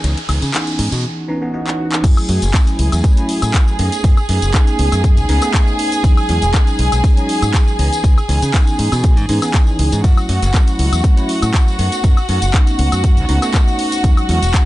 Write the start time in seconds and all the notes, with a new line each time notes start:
Already playing: G#4 G#5, riser
0.04 C#2 E3 B3 C#4 D#4, closed hi-hat, tambourine
0.17 closed hi-hat, tambourine
0.28 C#2 E3 B3 C#4 D#4, open hi-hat, high woodblock
0.42 C#3, closed hi-hat, tambourine
0.53 E3 B3 C#4 D#4, clap, closed hi-hat, tambourine
0.67 closed hi-hat, tambourine
0.79 G#2, open hi-hat
0.92 B2, closed hi-hat, tambourine
1.04 swell
1.28 E3 B3 C#4 D#4
1.42 E3 B3 C#4 D#4
1.53 E3 B3 C#4 D#4
1.67 clap
1.92 clap
2.03 F#2 F#3 A3 C#4 G#4 G#5, kick, closed hi-hat, crash, tambourine, cabasa
2.17 tambourine, cabasa, high woodblock
2.28 F#2 F#3 A3 C#4 F#4, open hi-hat
2.42 F#1, closed hi-hat, tambourine, cabasa
2.54 F#3 A3 C#4 E4, kick, clap, closed hi-hat, tambourine, cabasa
2.67 closed hi-hat, tambourine, cabasa
2.79 C#2, open hi-hat
2.92 E2, closed hi-hat, tambourine, cabasa, high woodblock
3.04 F#3 A3 C#4 E4, kick, closed hi-hat, cabasa
3.17 F#3 A3 C#4 E4, closed hi-hat, tambourine, cabasa
3.29 open hi-hat
3.42 A2, closed hi-hat, tambourine, cabasa, high woodblock
3.54 kick, clap, closed hi-hat, tambourine, cabasa
3.68 tambourine, cabasa
3.79 F#2 A3 B3 C#4 D#4, open hi-hat
3.92 closed hi-hat, tambourine, cabasa
4.04 F#2 A3 B3 C#4 D#4, kick, closed hi-hat, tambourine, cabasa
4.17 tambourine, cabasa, high woodblock
4.29 F#2 A3 B3 C#4 D#4, open hi-hat
4.42 F#1, closed hi-hat, tambourine, cabasa
4.53 A3 B3 C#4 D#4, kick, clap, closed hi-hat, tambourine, cabasa
4.67 closed hi-hat, tambourine, cabasa
4.79 C#2, open hi-hat
4.92 F#2, closed hi-hat, tambourine, cabasa, high woodblock
5.04 kick, closed hi-hat, tambourine, cabasa
5.17 C#2, closed hi-hat, tambourine, cabasa
5.28 C#2 A3 B3 C#4 D#4, open hi-hat
5.42 A3 B3 C#4 D#4, closed hi-hat, tambourine, cabasa, high woodblock
5.53 A3 B3, kick, clap, closed hi-hat, tambourine, cabasa
5.67 tambourine, cabasa
5.79 open hi-hat
5.92 closed hi-hat, tambourine, cabasa
6.04 E2 F#3 G#3 C#4 D#4, kick, closed hi-hat, tambourine, cabasa
6.17 tambourine, cabasa, high woodblock
6.29 E2 F#3 G#3 C#4 E4, open hi-hat
6.42 E1, closed hi-hat, tambourine, cabasa
6.54 F#3 G#3 C#4 D#4, kick, clap, closed hi-hat, tambourine, cabasa
6.67 closed hi-hat, tambourine, cabasa
6.79 B1, open hi-hat
6.92 B1, closed hi-hat, tambourine, cabasa, high woodblock
7.04 F#3 G#3 C#4 D#4, kick, closed hi-hat, tambourine, cabasa
7.16 F#3 G#3 C#4 D#4, closed hi-hat, tambourine, cabasa
7.29 open hi-hat
7.42 G#2, closed hi-hat, tambourine, cabasa, high woodblock
7.54 kick, clap, closed hi-hat, tambourine, cabasa
7.67 tambourine, cabasa
7.78 C#2 E3 B3 C#4 D#4, open hi-hat
7.93 closed hi-hat, tambourine, cabasa
8.04 C#2 E3 B3 C#4 D#4, kick, closed hi-hat, cabasa
8.18 tambourine, cabasa, high woodblock
8.29 C#2 E3 B3 C#4 D#4, open hi-hat
8.42 C#3, closed hi-hat, tambourine, cabasa
8.53 E3 B3 C#4 D#4, kick, clap, closed hi-hat, tambourine, cabasa
8.67 closed hi-hat, tambourine, cabasa
8.79 G#2, open hi-hat
8.92 B2, closed hi-hat, tambourine, cabasa, high woodblock
9.04 kick, closed hi-hat, tambourine, cabasa
9.17 G#2, closed hi-hat, tambourine, cabasa
9.29 G#2 E3 B3 C#4 D#4, open hi-hat
9.42 E3 B3 C#4 D#4, closed hi-hat, tambourine, cabasa, high woodblock
9.54 kick, clap, closed hi-hat, tambourine, cabasa
9.67 tambourine, cabasa
9.79 C#2, open hi-hat
9.92 G#2, closed hi-hat, tambourine, cabasa
10.04 F#2 F#3 A3 C#4 E4 F#4 F#5, kick, closed hi-hat, tambourine, cabasa
10.17 tambourine, cabasa, high woodblock
10.29 F#2 F#3 A3 C#4 F#4, open hi-hat
10.42 F#1, closed hi-hat, tambourine, cabasa
10.54 F#3 A3 C#4 E4, kick, clap, closed hi-hat, tambourine, cabasa
10.67 closed hi-hat, tambourine, cabasa
10.79 C#2, open hi-hat
10.92 E2, closed hi-hat, tambourine, cabasa, high woodblock
11.04 F#3 A3 C#4 E4, kick, closed hi-hat, tambourine, cabasa
11.17 F#3 A3 C#4 E4, closed hi-hat, tambourine, cabasa
11.29 open hi-hat
11.42 A2, closed hi-hat, tambourine, cabasa, high woodblock
11.54 kick, clap, closed hi-hat, tambourine, cabasa
11.68 tambourine, cabasa
11.79 F#2 A3 B3 C#4 D#4, open hi-hat
11.92 closed hi-hat, tambourine, cabasa
12.04 F#2 A3 B3 C#4 D#4, kick, closed hi-hat, tambourine, cabasa
12.17 tambourine, cabasa, high woodblock
12.29 F#2 A3 B3 C#4 D#4, open hi-hat
12.42 F#1, closed hi-hat, tambourine, cabasa
12.53 A3 B3 C#4 D#4, kick, clap, closed hi-hat, cabasa
12.67 closed hi-hat, tambourine, cabasa
12.79 C#2, open hi-hat
12.92 F#2, closed hi-hat, tambourine, cabasa, high woodblock
13.04 kick, closed hi-hat, tambourine, cabasa
13.17 C#2, closed hi-hat, tambourine, cabasa
13.28 C#2 A3 B3 C#4 D#4, open hi-hat
13.42 A3 B3 C#4 D#4, closed hi-hat, tambourine, cabasa, high woodblock
13.54 A3 B3 C#4, kick, clap, closed hi-hat, tambourine, cabasa
13.68 tambourine, cabasa
13.79 open hi-hat
13.92 closed hi-hat, tambourine, cabasa
14.04 E2 F#3 G#3 C#4 D#4, kick, closed hi-hat, tambourine, cabasa
14.17 tambourine, cabasa, high woodblock
14.29 E2 F#3 G#3 C#4 E4, open hi-hat
14.43 E1, closed hi-hat, tambourine, cabasa
14.53 F#3 G#3 C#4 D#4, kick, clap, closed hi-hat, tambourine, cabasa